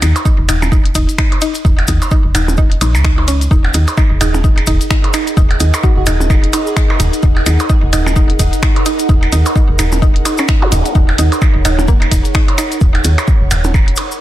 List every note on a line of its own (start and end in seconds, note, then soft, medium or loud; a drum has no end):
0.02 0.13 D#2 loud
0.02 0.07 D#4 medium
0.02 closed hi-hat medium
0.02 ride medium
0.02 percussion blips medium
0.02 maracas medium
0.16 closed hi-hat soft
0.16 percussion blips medium
0.16 maracas medium
0.25 0.29 D#4 loud
0.25 kick loud
0.25 maracas soft
0.39 0.46 D#1 medium
0.49 0.92 D#1 medium
0.49 0.52 D#4 medium
0.49 closed hi-hat medium
0.49 ride medium
0.49 percussion blips medium
0.49 maracas medium
0.62 percussion blips medium
0.62 maracas soft
0.72 0.75 D#4 medium
0.72 kick loud
0.72 maracas soft
0.86 closed hi-hat soft
0.95 1.06 D#1 loud
0.95 0.98 D#4 loud
0.95 kick medium
0.95 closed hi-hat medium
0.95 ride medium
0.95 maracas medium
1.09 closed hi-hat soft
1.09 maracas medium
1.18 1.24 D#4 medium
1.18 finger snap loud
1.18 kick loud
1.18 percussion blips medium
1.18 maracas soft
1.32 closed hi-hat soft
1.32 percussion blips medium
1.41 1.45 D#4 loud
1.41 closed hi-hat medium
1.41 ride medium
1.41 maracas medium
1.54 closed hi-hat soft
1.54 maracas soft
1.65 1.84 D#1 loud
1.65 1.68 D#4 medium
1.65 kick loud
1.65 maracas soft
1.79 closed hi-hat soft
1.79 percussion blips medium
1.88 1.99 D#2 loud
1.88 1.91 D#4 medium
1.88 kick medium
1.88 closed hi-hat medium
1.88 ride medium
1.88 maracas medium
2.02 closed hi-hat soft
2.02 percussion blips medium
2.02 maracas medium
2.11 2.15 D#4 loud
2.11 kick loud
2.11 maracas soft
2.25 2.32 D#1 medium
2.35 2.78 D#1 medium
2.35 2.40 D#4 medium
2.35 closed hi-hat medium
2.35 ride medium
2.35 percussion blips medium
2.35 maracas medium
2.48 percussion blips medium
2.48 maracas medium
2.57 2.61 D#4 loud
2.57 kick loud
2.57 maracas soft
2.72 closed hi-hat soft
2.81 2.96 A#1 loud
2.81 2.86 D#4 medium
2.81 closed hi-hat medium
2.81 ride medium
2.81 percussion blips medium
2.81 maracas medium
2.95 3.48 C#2 medium
2.95 percussion blips medium
2.95 maracas medium
3.04 3.10 D#4 medium
3.04 finger snap loud
3.04 kick loud
3.04 maracas soft
3.18 3.22 D#4 medium
3.18 percussion blips medium
3.28 3.35 C#4 medium
3.28 closed hi-hat loud
3.28 ride medium
3.28 maracas medium
3.41 closed hi-hat soft
3.41 maracas soft
3.51 3.70 D#1 loud
3.51 3.54 D#4 loud
3.51 14.21 D#4 medium
3.51 12.82 G#4 medium
3.51 kick loud
3.51 maracas soft
3.64 percussion blips medium
3.70 3.85 D#2 loud
3.70 3.77 D#4 medium
3.70 14.21 A#4 medium
3.70 closed hi-hat loud
3.70 ride medium
3.70 maracas medium
3.83 10.72 D#5 medium
3.88 closed hi-hat soft
3.88 percussion blips medium
3.88 maracas soft
3.97 4.01 D#4 medium
3.97 14.21 F#5 loud
3.97 kick loud
3.97 percussion blips medium
3.97 maracas soft
4.11 4.19 D#1 medium
4.21 4.64 D#1 medium
4.21 4.24 D#4 loud
4.21 closed hi-hat medium
4.21 ride medium
4.21 percussion blips medium
4.21 maracas loud
4.34 percussion blips medium
4.34 maracas medium
4.44 4.49 D#4 medium
4.44 kick loud
4.44 maracas soft
4.58 closed hi-hat soft
4.58 percussion blips medium
4.67 4.78 D#1 loud
4.67 4.70 D#4 loud
4.67 kick medium
4.67 closed hi-hat medium
4.67 ride medium
4.67 maracas loud
4.81 closed hi-hat soft
4.81 maracas medium
4.90 4.94 D#4 medium
4.90 finger snap loud
4.90 kick loud
4.90 maracas soft
5.04 closed hi-hat soft
5.04 percussion blips medium
5.13 5.17 D#4 medium
5.13 closed hi-hat loud
5.13 ride medium
5.13 percussion blips medium
5.13 maracas loud
5.27 closed hi-hat soft
5.27 maracas soft
5.37 5.56 D#1 loud
5.37 5.40 D#4 loud
5.37 kick loud
5.37 maracas soft
5.51 closed hi-hat soft
5.51 percussion blips medium
5.60 5.71 D#2 loud
5.60 5.65 D#4 medium
5.60 closed hi-hat loud
5.60 ride medium
5.60 maracas medium
5.74 closed hi-hat soft
5.74 percussion blips medium
5.74 maracas medium
5.83 5.87 D#4 loud
5.83 5.92 F#4 medium
5.83 kick loud
5.83 maracas soft
5.97 6.05 D#1 medium
5.97 6.03 F#4 medium
6.06 6.50 D#1 medium
6.06 6.10 D#4 medium
6.06 closed hi-hat loud
6.06 ride medium
6.06 percussion blips medium
6.06 maracas loud
6.20 percussion blips medium
6.20 maracas medium
6.30 6.33 D#4 medium
6.30 kick loud
6.30 percussion blips medium
6.30 maracas soft
6.44 closed hi-hat soft
6.53 6.56 D#4 loud
6.53 closed hi-hat loud
6.53 ride medium
6.53 percussion blips medium
6.53 maracas medium
6.67 maracas medium
6.76 6.82 D#4 medium
6.76 finger snap loud
6.76 kick loud
6.76 maracas soft
6.90 percussion blips medium
7.00 7.10 D#1 loud
7.00 7.03 D#4 loud
7.00 closed hi-hat loud
7.00 ride medium
7.00 maracas medium
7.13 closed hi-hat soft
7.13 maracas medium
7.23 7.42 D#1 loud
7.23 7.26 D#4 medium
7.23 kick loud
7.23 maracas soft
7.37 percussion blips medium
7.46 7.57 D#2 loud
7.46 7.49 D#4 medium
7.46 closed hi-hat loud
7.46 ride medium
7.46 percussion blips medium
7.46 maracas loud
7.60 closed hi-hat soft
7.60 percussion blips medium
7.60 maracas medium
7.69 7.73 D#4 loud
7.69 kick loud
7.69 maracas soft
7.83 7.91 D#1 medium
7.93 8.36 D#1 medium
7.93 7.98 D#4 medium
7.93 closed hi-hat loud
7.93 ride medium
7.93 percussion blips medium
7.93 maracas loud
8.06 percussion blips medium
8.06 maracas medium
8.16 8.19 D#4 loud
8.16 kick loud
8.16 maracas soft
8.30 closed hi-hat soft
8.39 8.50 D#1 loud
8.39 8.42 D#4 medium
8.39 kick medium
8.39 closed hi-hat loud
8.39 ride medium
8.39 maracas loud
8.53 closed hi-hat soft
8.53 maracas medium
8.63 8.66 D#4 medium
8.63 finger snap loud
8.63 kick loud
8.63 percussion blips medium
8.63 maracas soft
8.76 closed hi-hat soft
8.76 percussion blips medium
8.86 8.89 D#4 loud
8.86 closed hi-hat loud
8.86 ride medium
8.86 maracas medium
8.99 closed hi-hat soft
8.99 maracas medium
9.09 9.28 D#1 loud
9.09 9.14 D#4 medium
9.09 kick loud
9.09 maracas soft
9.23 closed hi-hat soft
9.23 percussion blips medium
9.32 9.43 D#2 loud
9.32 9.35 D#4 loud
9.32 closed hi-hat loud
9.32 ride medium
9.32 maracas medium
9.46 closed hi-hat soft
9.46 percussion blips medium
9.46 maracas medium
9.56 9.59 D#4 medium
9.56 kick loud
9.56 maracas soft
9.69 9.77 D#1 medium
9.79 10.22 D#1 medium
9.79 9.82 D#4 medium
9.79 closed hi-hat loud
9.79 ride medium
9.79 percussion blips medium
9.79 maracas loud
9.92 percussion blips medium
9.92 maracas medium
10.02 10.05 D#4 loud
10.02 kick loud
10.02 maracas soft
10.16 closed hi-hat soft
10.25 10.31 D#4 medium
10.25 closed hi-hat loud
10.25 ride medium
10.25 percussion blips medium
10.25 maracas loud
10.38 10.43 C#4 medium
10.38 percussion blips medium
10.38 maracas medium
10.48 10.54 D#4 medium
10.48 finger snap loud
10.48 kick loud
10.48 maracas soft
10.60 10.66 F#4 medium
10.60 14.21 C#5 medium
10.60 zap medium
10.60 percussion blips medium
10.72 10.82 D#1 loud
10.72 10.75 D#4 medium
10.72 closed hi-hat loud
10.72 ride medium
10.72 maracas medium
10.85 closed hi-hat soft
10.85 maracas medium
10.95 11.14 D#1 loud
10.95 10.98 D#4 medium
10.95 kick loud
10.95 maracas soft
11.09 percussion blips medium
11.18 11.29 D#2 loud
11.18 11.22 D#4 loud
11.18 closed hi-hat loud
11.18 ride medium
11.18 maracas medium
11.32 closed hi-hat soft
11.32 percussion blips medium
11.32 maracas soft
11.42 11.47 D#4 medium
11.42 kick loud
11.42 percussion blips medium
11.42 maracas soft
11.55 11.63 D#1 medium
11.65 12.08 D#1 medium
11.65 11.68 D#4 loud
11.65 closed hi-hat loud
11.65 ride medium
11.65 percussion blips medium
11.65 maracas medium
11.79 percussion blips medium
11.79 maracas soft
11.88 11.93 A#3 loud
11.88 kick loud
11.88 maracas soft
12.02 closed hi-hat soft
12.02 percussion blips medium
12.11 12.22 D#1 loud
12.11 12.15 D#4 medium
12.11 kick medium
12.11 closed hi-hat medium
12.11 ride medium
12.11 maracas medium
12.25 closed hi-hat soft
12.25 maracas medium
12.34 12.38 D#4 loud
12.34 finger snap loud
12.34 kick loud
12.34 maracas soft
12.48 closed hi-hat soft
12.48 percussion blips medium
12.58 12.63 D#4 medium
12.58 closed hi-hat medium
12.58 ride medium
12.58 percussion blips medium
12.58 maracas medium
12.72 closed hi-hat soft
12.72 maracas soft
12.81 13.00 D#1 loud
12.81 kick loud
12.81 maracas soft
12.95 closed hi-hat soft
12.95 percussion blips medium
13.04 13.15 D#2 loud
13.04 closed hi-hat medium
13.04 ride medium
13.04 maracas medium
13.18 closed hi-hat soft
13.18 percussion blips medium
13.18 maracas soft
13.27 kick loud
13.27 maracas soft
13.41 13.49 D#1 medium
13.51 13.94 D#1 medium
13.51 closed hi-hat medium
13.51 ride medium
13.51 percussion blips medium
13.51 maracas medium
13.64 percussion blips medium
13.64 maracas medium
13.74 kick loud
13.74 percussion blips medium
13.74 maracas soft
13.88 closed hi-hat soft
13.96 closed hi-hat medium
13.96 ride medium
13.96 percussion blips medium
13.96 maracas medium
14.11 maracas medium